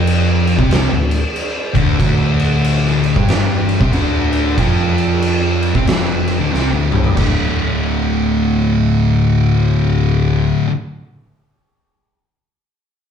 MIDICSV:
0, 0, Header, 1, 4, 480
1, 0, Start_track
1, 0, Key_signature, -1, "minor"
1, 0, Tempo, 646552
1, 1480, Time_signature, 4, 2, 24, 8
1, 9726, End_track
2, 0, Start_track
2, 0, Title_t, "Distorted electric guitar"
2, 0, Program_c, 0, 30
2, 0, Note_on_c, 0, 41, 89
2, 0, Note_on_c, 0, 53, 104
2, 423, Note_off_c, 0, 41, 0
2, 426, Note_off_c, 0, 53, 0
2, 428, Note_on_c, 0, 48, 81
2, 434, Note_on_c, 0, 60, 96
2, 660, Note_off_c, 0, 48, 0
2, 663, Note_off_c, 0, 60, 0
2, 668, Note_on_c, 0, 38, 71
2, 872, Note_off_c, 0, 38, 0
2, 1290, Note_on_c, 0, 38, 75
2, 1297, Note_on_c, 0, 50, 105
2, 1470, Note_off_c, 0, 38, 0
2, 1475, Note_off_c, 0, 50, 0
2, 1479, Note_on_c, 0, 38, 91
2, 1484, Note_on_c, 0, 50, 97
2, 2341, Note_off_c, 0, 38, 0
2, 2343, Note_off_c, 0, 50, 0
2, 2344, Note_on_c, 0, 43, 89
2, 2351, Note_on_c, 0, 55, 92
2, 2820, Note_off_c, 0, 43, 0
2, 2823, Note_off_c, 0, 55, 0
2, 2824, Note_on_c, 0, 48, 92
2, 2831, Note_on_c, 0, 60, 89
2, 2911, Note_off_c, 0, 48, 0
2, 2914, Note_on_c, 0, 38, 81
2, 2915, Note_off_c, 0, 60, 0
2, 2922, Note_on_c, 0, 50, 104
2, 3391, Note_off_c, 0, 38, 0
2, 3394, Note_on_c, 0, 41, 90
2, 3395, Note_off_c, 0, 50, 0
2, 3400, Note_on_c, 0, 53, 93
2, 4260, Note_off_c, 0, 41, 0
2, 4263, Note_off_c, 0, 53, 0
2, 4269, Note_on_c, 0, 48, 84
2, 4275, Note_on_c, 0, 60, 93
2, 4355, Note_off_c, 0, 48, 0
2, 4358, Note_off_c, 0, 60, 0
2, 4359, Note_on_c, 0, 41, 101
2, 4367, Note_on_c, 0, 53, 103
2, 4743, Note_off_c, 0, 41, 0
2, 4746, Note_off_c, 0, 53, 0
2, 4746, Note_on_c, 0, 38, 86
2, 4751, Note_on_c, 0, 50, 95
2, 4834, Note_off_c, 0, 38, 0
2, 4836, Note_off_c, 0, 50, 0
2, 4838, Note_on_c, 0, 48, 86
2, 4847, Note_on_c, 0, 60, 96
2, 4979, Note_off_c, 0, 48, 0
2, 4983, Note_off_c, 0, 60, 0
2, 4983, Note_on_c, 0, 38, 91
2, 4988, Note_on_c, 0, 50, 99
2, 5125, Note_off_c, 0, 38, 0
2, 5128, Note_off_c, 0, 50, 0
2, 5131, Note_on_c, 0, 43, 85
2, 5137, Note_on_c, 0, 55, 92
2, 5307, Note_off_c, 0, 43, 0
2, 5310, Note_on_c, 0, 38, 89
2, 5316, Note_off_c, 0, 55, 0
2, 5326, Note_on_c, 0, 45, 91
2, 5338, Note_on_c, 0, 50, 94
2, 7908, Note_off_c, 0, 38, 0
2, 7924, Note_off_c, 0, 45, 0
2, 7936, Note_off_c, 0, 50, 0
2, 9726, End_track
3, 0, Start_track
3, 0, Title_t, "Picked electric bass"
3, 0, Program_c, 1, 34
3, 0, Note_on_c, 1, 29, 95
3, 403, Note_off_c, 1, 29, 0
3, 434, Note_on_c, 1, 36, 96
3, 656, Note_off_c, 1, 36, 0
3, 667, Note_on_c, 1, 26, 80
3, 891, Note_off_c, 1, 26, 0
3, 1302, Note_on_c, 1, 26, 90
3, 1470, Note_off_c, 1, 26, 0
3, 1486, Note_on_c, 1, 26, 92
3, 2320, Note_off_c, 1, 26, 0
3, 2346, Note_on_c, 1, 31, 87
3, 2797, Note_off_c, 1, 31, 0
3, 2826, Note_on_c, 1, 36, 98
3, 2908, Note_off_c, 1, 36, 0
3, 2913, Note_on_c, 1, 26, 86
3, 3366, Note_off_c, 1, 26, 0
3, 3400, Note_on_c, 1, 29, 89
3, 4238, Note_off_c, 1, 29, 0
3, 4269, Note_on_c, 1, 36, 88
3, 4354, Note_off_c, 1, 36, 0
3, 4362, Note_on_c, 1, 29, 96
3, 4722, Note_off_c, 1, 29, 0
3, 4755, Note_on_c, 1, 26, 97
3, 4838, Note_off_c, 1, 26, 0
3, 4843, Note_on_c, 1, 36, 83
3, 4980, Note_off_c, 1, 36, 0
3, 4992, Note_on_c, 1, 26, 92
3, 5128, Note_off_c, 1, 26, 0
3, 5141, Note_on_c, 1, 31, 85
3, 5311, Note_off_c, 1, 31, 0
3, 5324, Note_on_c, 1, 26, 89
3, 7790, Note_off_c, 1, 26, 0
3, 9726, End_track
4, 0, Start_track
4, 0, Title_t, "Drums"
4, 54, Note_on_c, 9, 49, 81
4, 128, Note_off_c, 9, 49, 0
4, 350, Note_on_c, 9, 49, 59
4, 424, Note_off_c, 9, 49, 0
4, 435, Note_on_c, 9, 36, 106
4, 510, Note_off_c, 9, 36, 0
4, 527, Note_on_c, 9, 49, 78
4, 539, Note_on_c, 9, 38, 112
4, 601, Note_off_c, 9, 49, 0
4, 613, Note_off_c, 9, 38, 0
4, 825, Note_on_c, 9, 49, 62
4, 899, Note_off_c, 9, 49, 0
4, 1008, Note_on_c, 9, 49, 72
4, 1082, Note_off_c, 9, 49, 0
4, 1300, Note_on_c, 9, 36, 106
4, 1305, Note_on_c, 9, 49, 63
4, 1374, Note_off_c, 9, 36, 0
4, 1379, Note_off_c, 9, 49, 0
4, 1483, Note_on_c, 9, 36, 105
4, 1486, Note_on_c, 9, 49, 82
4, 1557, Note_off_c, 9, 36, 0
4, 1560, Note_off_c, 9, 49, 0
4, 1778, Note_on_c, 9, 49, 57
4, 1852, Note_off_c, 9, 49, 0
4, 1963, Note_on_c, 9, 49, 77
4, 2037, Note_off_c, 9, 49, 0
4, 2120, Note_on_c, 9, 38, 34
4, 2194, Note_off_c, 9, 38, 0
4, 2255, Note_on_c, 9, 49, 57
4, 2329, Note_off_c, 9, 49, 0
4, 2347, Note_on_c, 9, 36, 102
4, 2421, Note_off_c, 9, 36, 0
4, 2438, Note_on_c, 9, 49, 74
4, 2450, Note_on_c, 9, 38, 106
4, 2513, Note_off_c, 9, 49, 0
4, 2525, Note_off_c, 9, 38, 0
4, 2738, Note_on_c, 9, 49, 57
4, 2812, Note_off_c, 9, 49, 0
4, 2827, Note_on_c, 9, 36, 103
4, 2901, Note_off_c, 9, 36, 0
4, 2918, Note_on_c, 9, 49, 68
4, 2992, Note_off_c, 9, 49, 0
4, 3212, Note_on_c, 9, 49, 57
4, 3286, Note_off_c, 9, 49, 0
4, 3399, Note_on_c, 9, 36, 107
4, 3399, Note_on_c, 9, 49, 75
4, 3473, Note_off_c, 9, 36, 0
4, 3473, Note_off_c, 9, 49, 0
4, 3697, Note_on_c, 9, 49, 55
4, 3771, Note_off_c, 9, 49, 0
4, 3878, Note_on_c, 9, 49, 72
4, 3952, Note_off_c, 9, 49, 0
4, 4176, Note_on_c, 9, 49, 55
4, 4250, Note_off_c, 9, 49, 0
4, 4269, Note_on_c, 9, 36, 97
4, 4343, Note_off_c, 9, 36, 0
4, 4360, Note_on_c, 9, 49, 75
4, 4372, Note_on_c, 9, 38, 110
4, 4435, Note_off_c, 9, 49, 0
4, 4447, Note_off_c, 9, 38, 0
4, 4659, Note_on_c, 9, 49, 57
4, 4733, Note_off_c, 9, 49, 0
4, 4856, Note_on_c, 9, 38, 56
4, 4930, Note_off_c, 9, 38, 0
4, 5140, Note_on_c, 9, 45, 85
4, 5214, Note_off_c, 9, 45, 0
4, 5229, Note_on_c, 9, 43, 83
4, 5303, Note_off_c, 9, 43, 0
4, 5323, Note_on_c, 9, 57, 89
4, 5324, Note_on_c, 9, 36, 104
4, 5397, Note_off_c, 9, 57, 0
4, 5398, Note_off_c, 9, 36, 0
4, 9726, End_track
0, 0, End_of_file